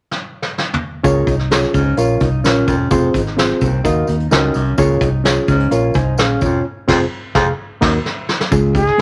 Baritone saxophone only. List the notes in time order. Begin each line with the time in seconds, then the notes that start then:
1.05 A#2
1.75 G#2
2.68 F2
2.91 F2
3.61 D#2
4.31 F2
4.54 F#2
4.78 A#2
5.49 G#2
6.42 F2
6.89 F2
7.35 F2
7.82 F#2